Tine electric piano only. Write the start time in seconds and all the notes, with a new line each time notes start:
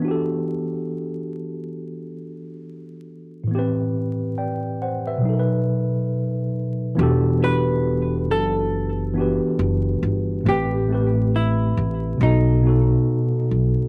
Already playing: E3
0.00 B3 D4
0.05 F#4 G4
0.11 A4
3.44 A2 E3
3.51 B3 G4
3.58 C4 B4
4.38 D5 G5
4.82 C5 F#5
5.07 B4 E5
5.18 B2 F#3
5.25 D#4 A4
5.33 A#4
5.40 B4
6.95 E3 B3 D4
7.00 F#4 G4 A4
7.38 E3 B3 D4
7.43 F#4 G4 B4
9.13 E3 B3 D4
9.18 F#4 G4 B4
10.44 A2 A3 C4
10.49 G4 B4
10.87 A2 A3 C4
10.93 G4 B4
12.18 B2 B3 D#4
12.23 F#4 A4
12.61 B2 B3 D#4
12.67 F#4 A4